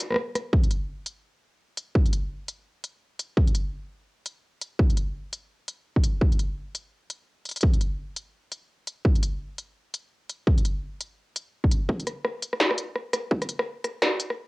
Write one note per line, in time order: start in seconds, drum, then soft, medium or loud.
0.00 closed hi-hat medium
0.11 cross-stick soft
0.12 cross-stick soft
0.14 cross-stick medium
0.16 cross-stick medium
0.35 cross-stick medium
0.35 closed hi-hat medium
0.53 kick loud
0.64 closed hi-hat soft
0.71 closed hi-hat medium
1.06 closed hi-hat medium
1.77 closed hi-hat medium
1.95 kick loud
2.06 closed hi-hat soft
2.13 closed hi-hat medium
2.48 closed hi-hat medium
2.84 closed hi-hat medium
3.19 closed hi-hat medium
3.37 kick loud
3.48 closed hi-hat soft
3.55 closed hi-hat medium
4.26 closed hi-hat medium
4.61 closed hi-hat medium
4.79 kick loud
4.90 closed hi-hat soft
4.97 closed hi-hat medium
5.33 closed hi-hat medium
5.68 closed hi-hat medium
5.96 kick medium
6.04 closed hi-hat medium
6.21 kick loud
6.32 closed hi-hat soft
6.39 closed hi-hat medium
6.75 closed hi-hat medium
7.10 closed hi-hat medium
7.45 closed hi-hat soft
7.49 closed hi-hat soft
7.51 closed hi-hat soft
7.56 closed hi-hat soft
7.61 kick loud
7.61 closed hi-hat soft
7.74 closed hi-hat soft
7.81 closed hi-hat medium
8.16 closed hi-hat medium
8.52 closed hi-hat medium
8.87 closed hi-hat medium
9.05 kick loud
9.16 closed hi-hat soft
9.23 closed hi-hat medium
9.58 closed hi-hat medium
9.94 closed hi-hat medium
10.29 closed hi-hat medium
10.47 kick loud
10.58 closed hi-hat soft
10.65 closed hi-hat medium
11.01 closed hi-hat medium
11.36 closed hi-hat medium
11.64 kick medium
11.71 closed hi-hat medium
11.89 kick loud
12.00 closed hi-hat soft
12.07 cross-stick medium
12.07 closed hi-hat medium
12.25 cross-stick medium
12.42 closed hi-hat medium
12.53 cross-stick medium
12.60 snare loud
12.71 cross-stick medium
12.78 closed hi-hat medium
12.96 cross-stick medium
13.13 cross-stick medium
13.13 closed hi-hat medium
13.31 kick loud
13.42 cross-stick soft
13.42 closed hi-hat soft
13.49 closed hi-hat medium
13.59 cross-stick medium
13.84 cross-stick soft
13.84 closed hi-hat medium
14.02 cross-stick medium
14.02 snare loud
14.20 closed hi-hat medium
14.30 cross-stick medium